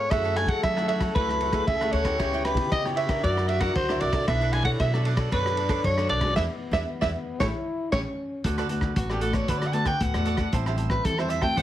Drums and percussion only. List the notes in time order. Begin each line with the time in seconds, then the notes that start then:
0.11 kick, cross-stick, ride
0.36 cross-stick, ride
0.48 kick, ride
0.63 kick, cross-stick, ride
0.77 cross-stick
0.89 ride
1.00 kick, cross-stick, ride
1.16 kick, ride
1.29 cross-stick
1.41 ride
1.53 kick, cross-stick, ride
1.67 kick, ride
1.81 cross-stick
1.93 ride
2.05 kick, cross-stick, ride
2.20 kick, cross-stick, ride
2.45 cross-stick, ride
2.57 kick, ride
2.72 kick, cross-stick, ride
2.86 cross-stick
2.97 ride
3.09 kick, cross-stick, ride
3.24 kick, ride
3.37 cross-stick
3.49 ride
3.60 kick, cross-stick, ride
3.75 kick, ride
3.89 cross-stick
4.01 ride
4.13 kick, cross-stick, ride
4.28 kick, cross-stick, ride
4.53 cross-stick, ride
4.65 kick, ride
4.80 kick, cross-stick, ride
4.94 cross-stick
5.05 ride
5.17 kick, cross-stick, ride
5.32 kick, ride
5.46 cross-stick
5.57 ride
5.69 kick, cross-stick, ride
5.84 kick, ride
5.98 cross-stick
6.09 ride
6.21 kick, cross-stick, ride
6.36 kick, snare
6.73 kick, snare
7.02 kick, snare
7.40 kick, snare
7.92 kick, snare
8.44 kick, closed hi-hat
8.58 cross-stick, closed hi-hat
8.69 closed hi-hat
8.81 kick, cross-stick
8.96 kick, closed hi-hat
9.10 cross-stick
9.21 closed hi-hat
9.33 kick, cross-stick, closed hi-hat
9.48 kick, closed hi-hat
9.62 cross-stick, closed hi-hat
9.73 closed hi-hat
9.85 kick, cross-stick, closed hi-hat
10.00 kick, closed hi-hat
10.14 cross-stick, closed hi-hat
10.25 closed hi-hat
10.37 kick, cross-stick, closed hi-hat
10.53 kick, closed hi-hat
10.66 cross-stick
10.78 closed hi-hat
10.90 kick, cross-stick
11.05 kick, closed hi-hat
11.18 cross-stick
11.30 closed hi-hat
11.42 kick, cross-stick
11.57 kick, closed hi-hat